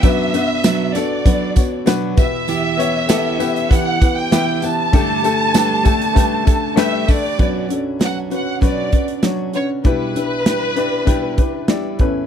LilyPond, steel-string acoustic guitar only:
\new Staff \with { instrumentName = "Steel-string acoustic guitar" } { \time 4/4 \key b \minor \tempo 4 = 98 <b, fis b d' fis'>8 <b d' fis'>8 <b, fis b d' fis'>8 <b d' fis'>8 <fis b d' fis'>8 <b d' fis'>8 <b, fis b d' fis'>8 <b e' g'>8 | <e b e' g'>8 <b e' g'>8 <e b e' g'>8 <b e' g'>8 <e b e' g'>8 <b e' g'>8 <e b e' g'>8 <b e' g'>8 | <g a d' g'>8 <a d' g'>8 <g a d' g'>8 <a d' g'>8 <g a d' g'>8 <a d' g'>8 <g a d' g'>8 <a d' g'>8 | <b, fis cis' d' fis'>8 <cis' d' fis'>8 <fis cis' d' fis'>8 <cis' d' fis'>8 <b, fis cis' d' fis'>8 <cis' d' fis'>8 <fis cis' d' fis'>8 <cis' d' fis'>8 |
<b, g d' e' b'>8 <d' e' b'>8 <g d' e' b'>8 <d' e' b'>8 <b, g d' e' b'>8 <d' e' b'>8 <g d' e' b'>8 <cis' e' b'>8 | }